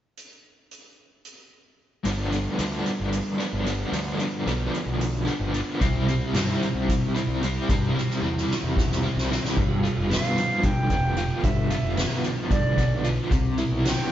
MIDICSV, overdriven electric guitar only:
0, 0, Header, 1, 2, 480
1, 0, Start_track
1, 0, Tempo, 536193
1, 156, Time_signature, 7, 3, 24, 8
1, 12638, End_track
2, 0, Start_track
2, 0, Title_t, "Overdriven electric guitar"
2, 0, Program_c, 0, 29
2, 1822, Note_on_c, 0, 43, 75
2, 1834, Note_on_c, 0, 50, 79
2, 1839, Note_on_c, 0, 53, 80
2, 1846, Note_on_c, 0, 59, 76
2, 1852, Note_on_c, 0, 62, 78
2, 2062, Note_off_c, 0, 62, 0
2, 2065, Note_on_c, 0, 62, 60
2, 2079, Note_off_c, 0, 59, 0
2, 2083, Note_on_c, 0, 59, 52
2, 2092, Note_off_c, 0, 53, 0
2, 2096, Note_on_c, 0, 53, 44
2, 2298, Note_off_c, 0, 43, 0
2, 2300, Note_off_c, 0, 50, 0
2, 2301, Note_on_c, 0, 43, 65
2, 2311, Note_on_c, 0, 50, 76
2, 2315, Note_off_c, 0, 53, 0
2, 2318, Note_on_c, 0, 53, 75
2, 2324, Note_off_c, 0, 59, 0
2, 2328, Note_on_c, 0, 59, 73
2, 2331, Note_off_c, 0, 62, 0
2, 2334, Note_on_c, 0, 62, 78
2, 3014, Note_off_c, 0, 62, 0
2, 3025, Note_on_c, 0, 62, 66
2, 3038, Note_off_c, 0, 59, 0
2, 3041, Note_on_c, 0, 59, 57
2, 3046, Note_off_c, 0, 53, 0
2, 3057, Note_on_c, 0, 53, 55
2, 3254, Note_off_c, 0, 50, 0
2, 3264, Note_on_c, 0, 50, 58
2, 3265, Note_off_c, 0, 53, 0
2, 3272, Note_off_c, 0, 43, 0
2, 3275, Note_on_c, 0, 53, 57
2, 3282, Note_off_c, 0, 59, 0
2, 3282, Note_off_c, 0, 62, 0
2, 3286, Note_on_c, 0, 59, 66
2, 3293, Note_on_c, 0, 62, 70
2, 3503, Note_off_c, 0, 50, 0
2, 3503, Note_on_c, 0, 43, 71
2, 3506, Note_off_c, 0, 53, 0
2, 3513, Note_on_c, 0, 50, 68
2, 3517, Note_on_c, 0, 53, 78
2, 3522, Note_off_c, 0, 59, 0
2, 3525, Note_off_c, 0, 62, 0
2, 3526, Note_on_c, 0, 59, 83
2, 3535, Note_on_c, 0, 62, 82
2, 3741, Note_off_c, 0, 62, 0
2, 3752, Note_on_c, 0, 62, 62
2, 3765, Note_off_c, 0, 59, 0
2, 3768, Note_on_c, 0, 59, 54
2, 3771, Note_off_c, 0, 53, 0
2, 3782, Note_on_c, 0, 53, 49
2, 3972, Note_off_c, 0, 43, 0
2, 3980, Note_off_c, 0, 50, 0
2, 3983, Note_on_c, 0, 43, 70
2, 3987, Note_off_c, 0, 53, 0
2, 3991, Note_on_c, 0, 50, 73
2, 3998, Note_on_c, 0, 53, 76
2, 4000, Note_off_c, 0, 59, 0
2, 4000, Note_off_c, 0, 62, 0
2, 4003, Note_on_c, 0, 59, 86
2, 4011, Note_on_c, 0, 62, 75
2, 4690, Note_off_c, 0, 62, 0
2, 4700, Note_on_c, 0, 62, 58
2, 4713, Note_off_c, 0, 59, 0
2, 4717, Note_on_c, 0, 59, 55
2, 4722, Note_off_c, 0, 53, 0
2, 4733, Note_on_c, 0, 53, 56
2, 4934, Note_off_c, 0, 50, 0
2, 4945, Note_on_c, 0, 50, 69
2, 4947, Note_off_c, 0, 53, 0
2, 4953, Note_off_c, 0, 43, 0
2, 4958, Note_on_c, 0, 53, 67
2, 4962, Note_off_c, 0, 59, 0
2, 4962, Note_off_c, 0, 62, 0
2, 4966, Note_on_c, 0, 59, 64
2, 4972, Note_on_c, 0, 62, 73
2, 5180, Note_off_c, 0, 50, 0
2, 5186, Note_off_c, 0, 53, 0
2, 5186, Note_on_c, 0, 48, 79
2, 5193, Note_off_c, 0, 62, 0
2, 5196, Note_on_c, 0, 55, 82
2, 5206, Note_off_c, 0, 59, 0
2, 5209, Note_on_c, 0, 60, 77
2, 5214, Note_on_c, 0, 64, 87
2, 5427, Note_off_c, 0, 64, 0
2, 5431, Note_on_c, 0, 64, 65
2, 5443, Note_off_c, 0, 60, 0
2, 5447, Note_on_c, 0, 60, 53
2, 5456, Note_off_c, 0, 55, 0
2, 5460, Note_on_c, 0, 55, 49
2, 5666, Note_off_c, 0, 48, 0
2, 5669, Note_on_c, 0, 48, 73
2, 5679, Note_off_c, 0, 55, 0
2, 5682, Note_on_c, 0, 55, 74
2, 5688, Note_off_c, 0, 60, 0
2, 5692, Note_on_c, 0, 60, 84
2, 5700, Note_off_c, 0, 64, 0
2, 5703, Note_on_c, 0, 64, 89
2, 6386, Note_off_c, 0, 64, 0
2, 6397, Note_on_c, 0, 64, 64
2, 6405, Note_off_c, 0, 60, 0
2, 6416, Note_on_c, 0, 60, 60
2, 6424, Note_off_c, 0, 55, 0
2, 6428, Note_on_c, 0, 55, 49
2, 6630, Note_off_c, 0, 48, 0
2, 6641, Note_on_c, 0, 48, 67
2, 6648, Note_off_c, 0, 55, 0
2, 6651, Note_on_c, 0, 55, 66
2, 6652, Note_off_c, 0, 60, 0
2, 6660, Note_off_c, 0, 64, 0
2, 6663, Note_on_c, 0, 60, 70
2, 6671, Note_on_c, 0, 64, 75
2, 6872, Note_off_c, 0, 48, 0
2, 6883, Note_on_c, 0, 48, 81
2, 6886, Note_off_c, 0, 55, 0
2, 6893, Note_off_c, 0, 60, 0
2, 6897, Note_on_c, 0, 55, 74
2, 6900, Note_off_c, 0, 64, 0
2, 6904, Note_on_c, 0, 60, 79
2, 6910, Note_on_c, 0, 64, 95
2, 7104, Note_off_c, 0, 64, 0
2, 7115, Note_on_c, 0, 64, 60
2, 7121, Note_off_c, 0, 60, 0
2, 7132, Note_on_c, 0, 60, 55
2, 7139, Note_off_c, 0, 55, 0
2, 7149, Note_on_c, 0, 55, 55
2, 7339, Note_off_c, 0, 48, 0
2, 7350, Note_on_c, 0, 48, 75
2, 7352, Note_off_c, 0, 55, 0
2, 7362, Note_off_c, 0, 60, 0
2, 7363, Note_on_c, 0, 55, 76
2, 7368, Note_off_c, 0, 64, 0
2, 7373, Note_on_c, 0, 60, 78
2, 7378, Note_on_c, 0, 64, 79
2, 8072, Note_off_c, 0, 64, 0
2, 8083, Note_on_c, 0, 64, 61
2, 8087, Note_off_c, 0, 60, 0
2, 8098, Note_off_c, 0, 55, 0
2, 8098, Note_on_c, 0, 60, 58
2, 8109, Note_on_c, 0, 55, 48
2, 8305, Note_off_c, 0, 48, 0
2, 8316, Note_on_c, 0, 48, 70
2, 8320, Note_off_c, 0, 55, 0
2, 8328, Note_off_c, 0, 60, 0
2, 8331, Note_on_c, 0, 55, 74
2, 8334, Note_off_c, 0, 64, 0
2, 8339, Note_on_c, 0, 60, 74
2, 8345, Note_on_c, 0, 64, 74
2, 8544, Note_off_c, 0, 48, 0
2, 8552, Note_off_c, 0, 55, 0
2, 8556, Note_off_c, 0, 60, 0
2, 8559, Note_off_c, 0, 64, 0
2, 8571, Note_on_c, 0, 43, 65
2, 8804, Note_on_c, 0, 65, 64
2, 9043, Note_on_c, 0, 59, 58
2, 9278, Note_on_c, 0, 53, 55
2, 9520, Note_on_c, 0, 50, 61
2, 9763, Note_off_c, 0, 59, 0
2, 9765, Note_off_c, 0, 43, 0
2, 9766, Note_on_c, 0, 59, 58
2, 9995, Note_off_c, 0, 65, 0
2, 10006, Note_on_c, 0, 65, 64
2, 10246, Note_on_c, 0, 43, 62
2, 10467, Note_off_c, 0, 65, 0
2, 10477, Note_on_c, 0, 65, 64
2, 10478, Note_off_c, 0, 53, 0
2, 10716, Note_off_c, 0, 59, 0
2, 10719, Note_off_c, 0, 50, 0
2, 10720, Note_on_c, 0, 59, 61
2, 10959, Note_on_c, 0, 53, 57
2, 11195, Note_on_c, 0, 50, 61
2, 11434, Note_off_c, 0, 59, 0
2, 11438, Note_on_c, 0, 59, 57
2, 11442, Note_off_c, 0, 43, 0
2, 11660, Note_off_c, 0, 65, 0
2, 11671, Note_on_c, 0, 65, 66
2, 11908, Note_off_c, 0, 50, 0
2, 11912, Note_on_c, 0, 48, 63
2, 11915, Note_off_c, 0, 65, 0
2, 11918, Note_off_c, 0, 53, 0
2, 11939, Note_off_c, 0, 59, 0
2, 12153, Note_on_c, 0, 64, 70
2, 12393, Note_on_c, 0, 59, 61
2, 12638, Note_off_c, 0, 48, 0
2, 12638, Note_off_c, 0, 59, 0
2, 12638, Note_off_c, 0, 64, 0
2, 12638, End_track
0, 0, End_of_file